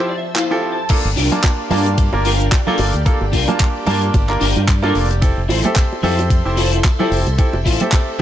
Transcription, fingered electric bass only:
0.90 muted fingered electric bass stroke
1.05 G1
1.17 C2
1.71 G2
2.13 G1
2.79 G1
2.94 D2
3.06 muted fingered electric bass stroke
3.21 G1
3.33 C2
3.87 G2
4.14 G1
4.41 G1
4.56 G2
4.95 F1
5.38 F1
5.49 A1
6.04 F2
6.46 F1
7.12 F1
7.27 C2
7.54 F1
7.66 A1

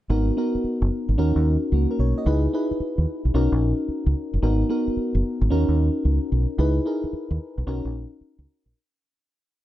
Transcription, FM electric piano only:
0.10 B3 D#4 F#4 A#4
0.37 B3 D#4 F#4 A#4
1.18 C#4 D#4 F#4 A#4
1.73 A#3 F#4
1.91 C#4 A#4
2.00 C#5
2.18 F#4 D#5
2.26 D#4 E4 G#4 B4
2.53 D#4 E4 G#4 B4
3.34 C#4 D#4 F#4 A#4
4.42 B3 D#4 F#4 A#4
4.69 B3 D#4 F#4 A#4
5.50 C#4 D#4 F#4 A#4
6.59 D#4 E4 G#4 B4
6.85 D#4 E4 G#4 A#4
7.67 C#4 D#4 F#4 A#4

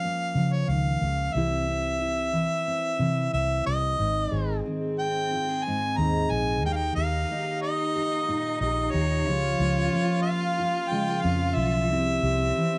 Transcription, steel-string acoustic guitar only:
Already playing: F3 C#4
0.05 A#3
0.37 F3
0.70 D#3
1.02 C#3
1.34 C3 E3 C4 E4 G4
1.69 C4
2.01 E4
2.32 E3
2.67 C4
2.99 E3
3.33 C4
3.65 G4
3.98 G#2 D#4
4.31 G#4
4.65 D#3 C4
5.33 F4
5.49 G#4
5.67 G#2 C4
6.00 D#4
6.33 G#4
6.65 D#3 G4
6.98 G4
7.31 A#3 D#4
7.96 G4
8.28 A#2 D#4
8.63 G4
8.95 G4
9.28 C#3 C#4
9.61 F4
9.93 F3 A#3
10.59 F4
10.91 C#3 G#3
11.08 A#3
11.25 C#4
11.58 F4
11.90 C3 E4
12.24 G4
12.56 E3 C4

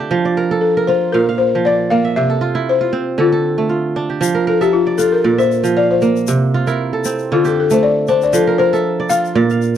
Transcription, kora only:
Already playing: D3 A3 C4 D4 F4 A4
0.00 G4
0.11 F3
0.25 D5
0.37 A#4
0.51 A4
0.77 A#4
0.88 F4
1.14 A#2 F5
1.29 F5
1.55 F3
1.66 D5
1.91 A#3
2.05 E5
2.17 C3
2.30 A4
2.41 F4
2.55 E4
2.81 F4
2.93 C4
3.18 D3 A4
3.32 A4
3.58 A3
3.69 F4
3.96 D4
4.10 G4
4.21 F3
4.35 A#4
4.47 A#4
4.61 A4 E5
4.87 D5
4.99 F4
5.24 A#2 D5
5.38 E5
5.64 F3
5.76 F5
6.02 A#3
6.28 C3
6.54 F4
6.67 E4 A#4
6.93 A4
7.05 C4
7.32 D3 F4
7.45 G4
7.71 A3
8.08 D4
8.33 F3
8.47 A#4
8.59 A#4
8.73 A4 E5
9.00 D5
9.10 F4
9.35 A#2 D5
9.51 F5

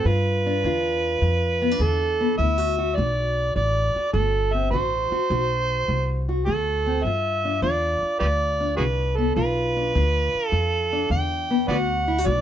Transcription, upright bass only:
0.05 G2
0.64 E2
1.22 F2
1.80 E2
2.39 D2
2.98 B1
3.56 A1
3.95 muted upright bass stroke
4.14 G1
4.71 A1
5.11 muted upright bass stroke
5.30 B1
5.88 C2
6.48 D2
7.05 G2
7.62 E2
8.01 muted upright bass stroke
8.21 D2
8.78 C2
9.36 B1
9.95 D2
10.34 muted upright bass stroke
10.52 F2
11.10 E2
11.68 D2
12.26 B1

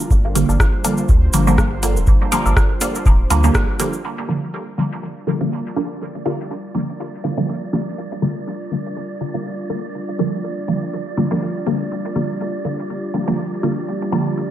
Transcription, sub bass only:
0.11 G1
0.49 G1
1.09 D2
1.34 G1
1.97 D1
2.46 G1
3.06 D1
3.30 D2
3.55 G1

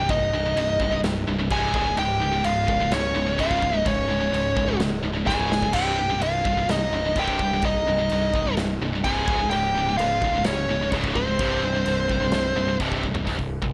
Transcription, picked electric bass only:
0.09 C1
0.32 C1
0.56 C1
0.80 C1
1.03 C1
1.27 C1
1.51 C1
1.74 C#1
1.98 C#1
2.45 C#1
2.68 C#1
2.92 C#1
3.15 C#1
3.39 C#1
3.62 C#1
3.86 C#1
4.09 C#1
4.33 C#1
4.57 C#1
4.79 C#1
5.03 C#1
5.27 C#1
5.50 C#1
5.74 C1
6.20 C1
6.45 C1
6.68 C1
6.91 C1
7.16 C1
7.39 C1
7.63 C1
7.87 C1
8.10 C1
8.34 C1
8.57 C1
8.80 C1
9.04 C1
9.28 C#1
9.50 C#1
9.99 C#1
10.22 C#1
10.46 C#1
10.69 C#1
10.92 C#1
11.15 C#1
11.40 C1
11.62 C1
11.85 C1
12.10 C1
12.33 C1
12.55 C1
12.80 C1
13.03 C1
13.27 C1
13.39 C1
13.62 C1

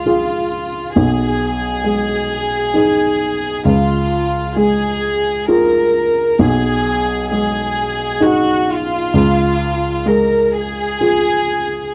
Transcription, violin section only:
Already playing: F4
0.98 G#4
3.68 F4
4.60 G#4
5.50 A#4
6.43 G#4
7.32 G#4
8.24 F#4
8.70 F4
10.09 A#4
10.53 G#4

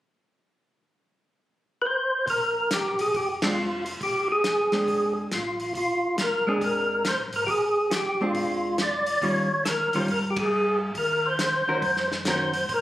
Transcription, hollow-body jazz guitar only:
3.43 G#3 C4 D4
4.72 G#3 C4 D4
6.47 G#3 C4 D4
8.21 G#3 C4 D4
9.22 D#3 G3 C#4 F4
9.94 D#3 G3 C#4 F4
11.68 D#3 C#4 F#4 A#4
12.27 D#3 C#4 F#4 A#4

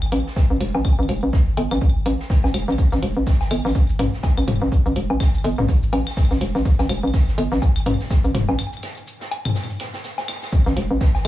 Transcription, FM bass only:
0.12 A1
0.50 A1
0.61 E1
0.75 A1
0.99 A1
1.09 E1
1.23 A1
1.57 G1
1.71 A1
2.06 A1
2.44 A1
2.54 E1
2.68 A1
2.92 A1
3.02 E1
3.17 A1
3.51 G1
3.65 A1
3.99 A1
4.38 A1
4.48 E1
4.62 A1
4.86 A1
4.96 E1
5.10 A1
5.44 G1
5.58 A1
5.93 A1
6.31 A1
6.41 E1
6.55 A1
6.79 A1
6.89 E1
7.03 A1
7.38 G1
7.52 A1
7.86 A1
8.24 A1
8.35 E1
8.49 A1
10.66 A1
10.77 E1
10.91 A1

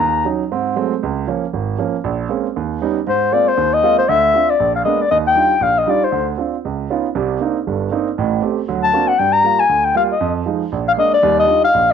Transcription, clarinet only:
Already playing: A#5
3.09 C5
3.33 D5
3.48 C5
3.74 D#5
3.98 C5
4.09 E5
4.50 D5
4.76 F5
4.85 D#5
5.02 D5
5.11 D#5
5.27 G5
5.63 F5
5.78 D#5
5.90 D5
6.04 C5
8.83 A5
9.08 F#5
9.19 G5
9.33 A#5
9.60 G#5
9.85 G5
9.97 F5
10.12 D#5
10.88 F5
10.98 D#5
11.14 D5
11.39 D#5
11.64 F5

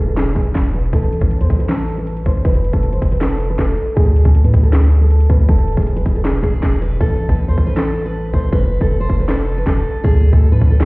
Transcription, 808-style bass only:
0.00 E1
0.36 E1
0.55 E1
0.93 A1
1.22 A1
1.40 E2
1.50 A1
2.26 A1
2.45 F1
2.73 F1
3.02 F1
3.59 F1
3.97 D2
4.25 D2
4.44 A2
4.54 D2
5.30 D2
5.49 E1
5.77 E1
6.06 E1
6.44 E1
6.63 E1
7.01 A1
7.29 A1
7.48 E2
7.58 A1
8.34 A1
8.53 F1
8.81 F1
9.10 F1
9.67 F1
10.04 D2
10.33 D2
10.52 A2
10.61 D2

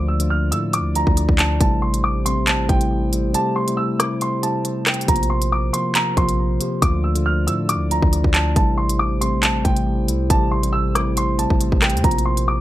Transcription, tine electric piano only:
Already playing: D3 F3 A3 F4
0.19 D3 F3 A3 F4
0.51 D3 F3 A3 E4
0.94 D3 F3 A3 F4
1.59 C3 G3 A3 E4
2.24 C3 G3 A3 C4
2.68 C3 G3 A3 E4
3.12 C3 G3 A3 E4
3.33 C3 G3 A3 G4
3.67 C3 G3 A3 E4
3.98 C3 G3 A3 E4
4.42 C3 G3 A3 E4
5.07 C3 F3 A#3 F4
5.73 C3 F3 A#3 F4
6.16 C3 F3 A#3 F4
6.59 C3 F3 A#3 G4
6.81 D3 F3 A3 F4
7.15 D3 F3 A3 F4
7.47 D3 F3 A3 E4
7.90 D3 F3 A3 F4
8.55 C3 G3 A3 E4
9.20 C3 G3 A3 C4
9.64 C3 G3 A3 E4
10.07 C3 G3 A3 E4
10.28 C3 G3 A3 G4
10.62 C3 G3 A3 E4
10.94 C3 G3 A3 E4
11.37 C3 G3 A3 E4
12.03 C3 F3 A#3 F4

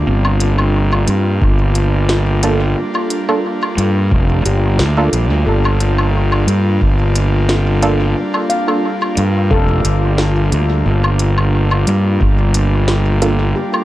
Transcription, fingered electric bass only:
0.07 G1
1.08 G2
1.42 G1
3.78 G2
4.11 F1
4.45 G1
4.79 D2
5.13 A#1
5.31 D2
5.46 G1
6.47 G2
6.81 G1
9.17 G2
9.51 F1
9.85 G1
10.52 D2
10.86 G1
11.87 G2
12.21 G1

